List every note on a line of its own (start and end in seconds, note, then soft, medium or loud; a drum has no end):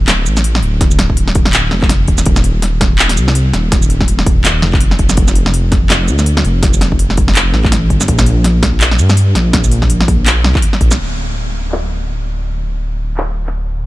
0.00 0.28 D1 loud
0.08 clap loud
0.08 snare medium
0.08 closed hi-hat medium
0.26 0.62 A1 medium
0.26 shaker soft
0.37 snare medium
0.37 shaker soft
0.44 closed hi-hat medium
0.55 snare medium
0.63 0.80 D1 medium
0.63 closed hi-hat soft
0.81 1.71 D1 loud
0.81 kick loud
0.81 snare medium
0.81 closed hi-hat medium
0.91 shaker soft
0.99 snare medium
0.99 closed hi-hat medium
1.10 kick medium
1.17 closed hi-hat medium
1.28 snare soft
1.35 kick loud
1.35 closed hi-hat medium
1.45 snare medium
1.53 clap loud
1.53 closed hi-hat medium
1.71 2.08 F1 medium
1.71 snare medium
1.82 kick loud
1.82 clap soft
1.89 snare medium
1.89 closed hi-hat medium
2.08 2.25 D#1 medium
2.08 kick medium
2.08 closed hi-hat soft
2.18 snare medium
2.18 shaker medium
2.26 3.19 D#1 loud
2.26 kick loud
2.26 closed hi-hat medium
2.36 snare medium
2.36 shaker soft
2.44 closed hi-hat medium
2.62 snare soft
2.62 closed hi-hat medium
2.81 kick loud
2.81 snare medium
2.81 closed hi-hat medium
2.99 clap loud
3.09 snare soft
3.09 closed hi-hat medium
3.17 3.53 C2 medium
3.17 shaker soft
3.28 snare medium
3.35 closed hi-hat medium
3.53 3.71 D#1 medium
3.53 snare soft
3.53 closed hi-hat soft
3.72 4.62 D#1 medium
3.72 kick loud
3.72 snare medium
3.72 closed hi-hat medium
3.82 shaker soft
3.90 closed hi-hat medium
4.01 kick medium
4.01 snare soft
4.08 closed hi-hat medium
4.19 snare medium
4.26 kick loud
4.26 closed hi-hat medium
4.45 clap loud
4.45 snare soft
4.45 closed hi-hat medium
4.62 4.98 F1 medium
4.62 snare medium
4.73 kick loud
4.73 clap soft
4.80 closed hi-hat medium
4.91 snare soft
4.99 5.16 F1 medium
4.99 kick medium
4.99 closed hi-hat soft
5.09 snare medium
5.09 shaker medium
5.17 6.10 F1 loud
5.17 kick loud
5.17 closed hi-hat medium
5.28 snare soft
5.28 shaker soft
5.35 closed hi-hat medium
5.46 snare medium
5.54 closed hi-hat medium
5.72 kick loud
5.72 snare soft
5.72 closed hi-hat medium
5.90 clap loud
5.90 snare medium
5.90 closed hi-hat medium
6.08 6.44 D2 medium
6.08 shaker soft
6.19 snare soft
6.19 shaker soft
6.26 closed hi-hat medium
6.37 snare medium
6.45 6.62 F1 medium
6.45 closed hi-hat soft
6.63 7.53 F1 medium
6.63 kick loud
6.63 snare medium
6.63 closed hi-hat medium
6.74 shaker soft
6.81 snare medium
6.81 closed hi-hat medium
6.92 kick medium
6.99 closed hi-hat medium
7.10 snare soft
7.17 kick loud
7.17 closed hi-hat medium
7.28 snare medium
7.35 clap loud
7.35 closed hi-hat medium
7.54 7.89 A1 medium
7.54 snare medium
7.64 kick loud
7.64 clap soft
7.72 snare medium
7.72 closed hi-hat medium
7.90 8.07 G1 medium
7.90 kick medium
7.90 closed hi-hat soft
8.01 snare medium
8.01 shaker medium
8.08 9.01 A#1 loud
8.08 kick loud
8.08 closed hi-hat medium
8.19 snare medium
8.19 shaker soft
8.26 closed hi-hat medium
8.44 snare medium
8.44 closed hi-hat medium
8.63 kick loud
8.63 snare medium
8.63 closed hi-hat medium
8.81 clap loud
8.81 closed hi-hat medium
8.91 snare medium
8.99 9.35 G2 medium
8.99 shaker soft
9.10 snare medium
9.10 shaker soft
9.17 closed hi-hat medium
9.35 9.53 A#1 loud
9.35 snare medium
9.35 closed hi-hat soft
9.53 10.46 A#1 medium
9.53 kick loud
9.53 snare medium
9.53 closed hi-hat medium
9.64 shaker soft
9.72 closed hi-hat medium
9.82 kick medium
9.82 snare medium
9.90 closed hi-hat medium
10.01 snare medium
10.08 kick loud
10.08 closed hi-hat medium
10.26 clap loud
10.26 snare medium
10.26 closed hi-hat medium
10.44 10.54 C2 loud
10.44 snare medium
10.55 kick loud
10.55 clap soft
10.62 closed hi-hat medium
10.73 snare medium
10.81 10.98 A#1 medium
10.81 kick medium
10.81 closed hi-hat soft
10.91 snare medium
10.91 shaker medium
10.99 13.86 D1 medium
11.72 clap loud
13.17 clap loud
13.46 clap soft